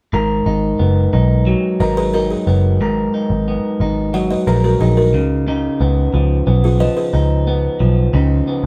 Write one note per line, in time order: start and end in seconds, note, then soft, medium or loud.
0.13 0.40 G#1 medium
0.13 2.80 G#2 medium
0.13 1.79 A#4 medium
0.46 0.73 G#1 medium
0.46 1.13 D#4 medium
0.79 1.06 F#1 medium
0.79 2.47 B3 soft
1.13 1.53 B1 medium
1.13 2.14 D#4 soft
1.46 4.13 F#3 medium
1.80 2.34 G#1 medium
1.80 2.80 A#4 medium
1.80 1.96 B4 medium
1.80 1.96 D#5 medium
1.97 2.13 G#4 medium
1.97 2.13 B4 medium
2.14 3.14 D#4 medium
2.14 2.30 F#4 soft
2.14 2.29 A#4 medium
2.31 3.26 G#4 medium
2.47 2.80 F#1 medium
2.47 3.48 B3 soft
2.80 3.07 G#1 medium
2.80 5.21 G#2 medium
2.80 4.46 A#4 medium
3.14 3.81 D#4 medium
3.30 3.57 G#1 medium
3.48 5.51 B3 soft
3.80 4.34 G#1 medium
3.80 4.80 D#4 soft
4.14 5.21 F#3 medium
4.14 4.29 D#5 medium
4.14 4.30 F#5 medium
4.31 4.47 B4 medium
4.31 4.46 D#5 medium
4.47 4.74 A#1 medium
4.47 4.63 G#4 medium
4.47 5.20 A#4 medium
4.47 4.63 B4 medium
4.64 4.80 F#4 medium
4.64 4.80 A#4 medium
4.81 5.14 A#1 medium
4.81 5.48 D#4 medium
4.81 4.96 G#4 medium
4.97 5.29 F#4 medium
4.97 5.29 A#4 medium
5.14 5.68 C#2 medium
5.14 5.46 C#3 medium
5.48 8.13 C#3 medium
5.48 7.13 D#4 medium
5.81 6.07 C#2 medium
5.81 6.47 B3 medium
6.14 6.40 C#2 medium
6.14 6.79 F3 soft
6.47 6.87 B1 medium
6.47 7.47 B3 medium
6.64 6.80 F4 medium
6.64 6.80 G#4 medium
6.80 7.79 F3 medium
6.80 6.96 B4 medium
6.80 6.96 D#5 medium
6.97 7.94 G#4 medium
6.97 7.93 B4 medium
7.13 7.67 C#2 medium
7.13 8.14 D#4 medium
7.47 8.47 B3 medium
7.80 8.07 B1 medium
7.80 8.66 F3 soft
8.13 8.40 C#2 medium
8.13 8.66 C#3 medium
8.13 8.66 D#4 soft
8.47 8.66 B3 medium